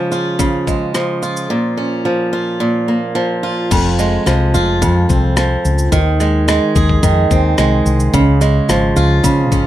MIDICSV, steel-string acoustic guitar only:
0, 0, Header, 1, 2, 480
1, 0, Start_track
1, 0, Key_signature, -4, "minor"
1, 0, Tempo, 552995
1, 1303, Time_signature, 4, 2, 24, 8
1, 8393, End_track
2, 0, Start_track
2, 0, Title_t, "Steel-string acoustic guitar"
2, 0, Program_c, 0, 25
2, 0, Note_on_c, 0, 49, 66
2, 0, Note_on_c, 0, 53, 63
2, 0, Note_on_c, 0, 56, 59
2, 0, Note_on_c, 0, 61, 47
2, 0, Note_on_c, 0, 68, 53
2, 98, Note_off_c, 0, 68, 0
2, 101, Note_on_c, 0, 65, 56
2, 328, Note_off_c, 0, 49, 0
2, 338, Note_on_c, 0, 49, 66
2, 580, Note_off_c, 0, 56, 0
2, 583, Note_on_c, 0, 56, 42
2, 815, Note_off_c, 0, 53, 0
2, 819, Note_on_c, 0, 53, 64
2, 1059, Note_off_c, 0, 65, 0
2, 1063, Note_on_c, 0, 65, 53
2, 1299, Note_off_c, 0, 49, 0
2, 1302, Note_on_c, 0, 46, 61
2, 1351, Note_off_c, 0, 56, 0
2, 1536, Note_off_c, 0, 61, 0
2, 1540, Note_on_c, 0, 61, 51
2, 1777, Note_off_c, 0, 53, 0
2, 1780, Note_on_c, 0, 53, 50
2, 2017, Note_off_c, 0, 65, 0
2, 2020, Note_on_c, 0, 65, 58
2, 2247, Note_off_c, 0, 46, 0
2, 2258, Note_on_c, 0, 46, 64
2, 2501, Note_on_c, 0, 58, 44
2, 2731, Note_off_c, 0, 53, 0
2, 2735, Note_on_c, 0, 53, 60
2, 2975, Note_off_c, 0, 65, 0
2, 2978, Note_on_c, 0, 65, 56
2, 3220, Note_on_c, 0, 41, 68
2, 3269, Note_off_c, 0, 46, 0
2, 3270, Note_off_c, 0, 58, 0
2, 3270, Note_off_c, 0, 61, 0
2, 3463, Note_on_c, 0, 56, 55
2, 3696, Note_off_c, 0, 53, 0
2, 3700, Note_on_c, 0, 53, 66
2, 3938, Note_off_c, 0, 65, 0
2, 3941, Note_on_c, 0, 65, 60
2, 4172, Note_off_c, 0, 41, 0
2, 4182, Note_on_c, 0, 41, 74
2, 4418, Note_on_c, 0, 60, 45
2, 4648, Note_off_c, 0, 53, 0
2, 4658, Note_on_c, 0, 53, 67
2, 5135, Note_off_c, 0, 53, 0
2, 5138, Note_on_c, 0, 51, 74
2, 5190, Note_off_c, 0, 65, 0
2, 5191, Note_off_c, 0, 41, 0
2, 5380, Note_off_c, 0, 56, 0
2, 5384, Note_on_c, 0, 56, 52
2, 5621, Note_off_c, 0, 56, 0
2, 5624, Note_on_c, 0, 56, 69
2, 5866, Note_on_c, 0, 68, 62
2, 6091, Note_off_c, 0, 51, 0
2, 6102, Note_on_c, 0, 51, 67
2, 6338, Note_off_c, 0, 60, 0
2, 6342, Note_on_c, 0, 60, 52
2, 6575, Note_off_c, 0, 56, 0
2, 6579, Note_on_c, 0, 56, 70
2, 7062, Note_on_c, 0, 49, 72
2, 7109, Note_off_c, 0, 51, 0
2, 7110, Note_off_c, 0, 60, 0
2, 7297, Note_off_c, 0, 56, 0
2, 7301, Note_on_c, 0, 56, 58
2, 7543, Note_on_c, 0, 53, 64
2, 7777, Note_off_c, 0, 68, 0
2, 7781, Note_on_c, 0, 65, 68
2, 8007, Note_off_c, 0, 49, 0
2, 8017, Note_on_c, 0, 49, 67
2, 8260, Note_on_c, 0, 61, 54
2, 8393, Note_off_c, 0, 49, 0
2, 8393, Note_off_c, 0, 53, 0
2, 8393, Note_off_c, 0, 56, 0
2, 8393, Note_off_c, 0, 61, 0
2, 8393, Note_off_c, 0, 65, 0
2, 8393, End_track
0, 0, End_of_file